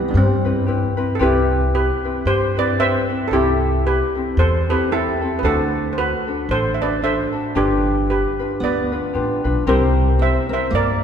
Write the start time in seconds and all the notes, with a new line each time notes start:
Already playing: B3 C4 E4 G4 B4
0.08 B3 D4
0.14 G2 G3 C4
0.45 C4 E4 B4
0.66 C4 E4 G4 B4
0.97 C4 E4 B4
1.15 A4
1.19 C2 C4 E4 G4 B4
1.75 G4 B4
2.04 C4 E4 B4
2.25 G2 G4 C5
2.57 C4 E4 B4 D5
2.79 C4 E4 G4 B4 C5 E5
3.09 C4 E4 B4
3.28 C2 A4
3.32 C4 E4 G4 A4
3.87 G4 B4
4.15 C4 E4 A4
4.37 E2 A4 C5
4.69 C4 E4 G4 A4 B4
4.91 C4 E4 G4 A4
5.21 C4 E4 A4
5.39 B4
5.43 D2 D4 F#4 A4 C5
5.93 C5
5.98 F#4 B4
6.27 D4 F#4 A4
6.49 A1 A4 C5
6.74 E5
6.81 D4 F#4 A4 B4 D5
7.02 D4 F#4 A4 C5 E5
7.32 D4 F#4 A4
7.55 G1 D4 F4 G4 B4
8.10 G4 B4
8.39 D4 F4 B4
8.60 D2 B3 D5
8.65 B4
8.92 D4 F4 B4
9.14 A1 D4 F4 G4 B4
9.44 B1 D4 F4 B4
9.67 C2 G3 C4 E4 G4 A#4 C5
10.19 C4 C5 E5
10.49 C4 E4 A#4
10.53 C5 E5
10.71 G2 A#3
10.75 A#4 D5